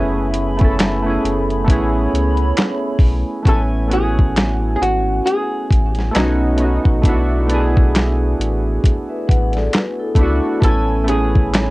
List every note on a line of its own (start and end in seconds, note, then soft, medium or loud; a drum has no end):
0.00 1.18 F#1 loud
0.00 0.41 A3 medium
0.00 3.43 A3 medium
0.00 0.42 B3 medium
0.00 0.43 C#4 medium
0.00 0.44 E4 medium
0.00 0.44 G#4 medium
0.00 1.64 E5 medium
0.00 3.42 G#5 medium
0.00 1.66 B5 medium
0.34 closed hi-hat medium
0.57 0.91 A3 medium
0.57 0.92 B3 medium
0.57 0.93 C#4 medium
0.57 closed hi-hat soft
0.61 0.94 E4 medium
0.61 0.95 A4 medium
0.61 kick medium
0.80 snare loud
0.80 clap medium
0.80 closed hi-hat medium
1.02 1.63 A3 medium
1.02 1.65 B3 medium
1.02 1.67 C#4 medium
1.08 1.69 E4 medium
1.08 1.70 G#4 medium
1.24 1.70 F#1 loud
1.24 closed hi-hat medium
1.50 closed hi-hat soft
1.64 2.07 A1 loud
1.64 3.10 A3 medium
1.64 3.11 B3 medium
1.64 3.12 C#4 medium
1.64 3.44 C#5 medium
1.64 3.44 B5 medium
1.64 kick medium
1.70 3.13 E4 medium
1.70 3.14 G#4 medium
1.70 closed hi-hat medium
2.13 2.52 C#2 medium
2.13 closed hi-hat medium
2.37 closed hi-hat soft
2.57 snare loud
2.57 clap medium
2.57 closed hi-hat medium
2.99 3.24 B1 medium
2.99 kick medium
2.99 open hi-hat soft
3.43 4.76 A1 loud
3.43 3.81 A3 medium
3.43 3.82 B3 medium
3.43 3.83 C#4 medium
3.43 kick loud
3.43 closed hi-hat medium
3.48 3.84 E4 medium
3.48 3.60 A4 medium
3.48 3.85 G#5 medium
3.88 5.30 A3 medium
3.88 5.31 B3 medium
3.88 5.32 C#4 medium
3.88 closed hi-hat medium
3.93 5.33 E4 medium
3.93 5.34 F#4 medium
3.93 4.75 G#4 loud
4.19 kick medium
4.37 snare loud
4.37 clap medium
4.37 closed hi-hat medium
4.76 4.81 G#4 medium
4.81 5.21 G#1 medium
4.81 5.27 F#4 medium
4.81 closed hi-hat medium
5.26 6.17 G#4 medium
5.26 closed hi-hat medium
5.71 6.11 A1 medium
5.71 kick medium
5.71 closed hi-hat medium
5.95 snare soft
5.95 closed hi-hat soft
6.11 6.50 A3 medium
6.11 6.51 B3 medium
6.11 6.52 C#4 medium
6.11 closed hi-hat medium
6.15 6.79 B1 loud
6.15 6.83 D#4 medium
6.15 6.53 D#4 medium
6.15 6.54 F#4 medium
6.15 snare medium
6.15 clap medium
6.56 6.95 A3 medium
6.56 6.96 B3 medium
6.56 6.96 C#4 medium
6.56 closed hi-hat medium
6.62 6.97 D#4 medium
6.62 6.98 F#4 medium
6.85 7.02 A#1 medium
6.85 kick medium
7.01 8.34 B1 loud
7.01 7.40 A3 medium
7.01 7.40 B3 medium
7.01 7.41 D4 medium
7.01 kick loud
7.01 closed hi-hat medium
7.07 7.42 E4 medium
7.07 7.43 F#4 medium
7.47 8.89 A3 medium
7.47 8.90 B3 medium
7.47 8.91 D4 medium
7.47 closed hi-hat medium
7.52 8.92 E4 medium
7.52 8.92 G#4 medium
7.77 kick medium
7.95 snare loud
7.95 clap medium
7.95 closed hi-hat medium
8.39 8.79 A1 medium
8.39 closed hi-hat medium
8.84 kick medium
8.84 closed hi-hat medium
9.09 9.27 B4 medium
9.09 9.27 E5 medium
9.27 9.69 A1 medium
9.27 9.53 B4 medium
9.27 9.53 F#5 medium
9.27 kick medium
9.27 closed hi-hat medium
9.53 9.72 A4 medium
9.53 9.72 D5 medium
9.53 snare soft
9.53 closed hi-hat soft
9.72 9.98 F#4 medium
9.72 9.98 B4 medium
9.72 snare loud
9.72 clap medium
9.72 closed hi-hat medium
9.99 10.59 E4 medium
9.99 10.59 A4 medium
10.15 10.40 C#2 medium
10.15 10.53 A3 medium
10.15 10.54 B3 medium
10.15 kick medium
10.15 closed hi-hat medium
10.19 10.55 D4 medium
10.19 10.56 E4 medium
10.19 10.57 F#4 medium
10.60 11.70 A1 loud
10.60 10.98 A3 medium
10.60 11.70 A3 medium
10.60 10.99 B3 medium
10.60 11.00 C#4 medium
10.60 11.70 C#5 medium
10.60 11.70 G#5 medium
10.60 11.70 B5 medium
10.60 kick loud
10.60 closed hi-hat medium
10.64 11.01 E4 medium
10.64 11.05 A4 loud
10.64 11.02 G#5 medium
11.04 11.70 A3 medium
11.04 11.70 B3 medium
11.04 11.70 C#4 medium
11.04 closed hi-hat medium
11.09 11.70 E4 medium
11.09 11.70 G#4 loud
11.09 11.70 G#4 medium
11.35 kick medium
11.54 snare loud
11.54 clap medium
11.54 closed hi-hat medium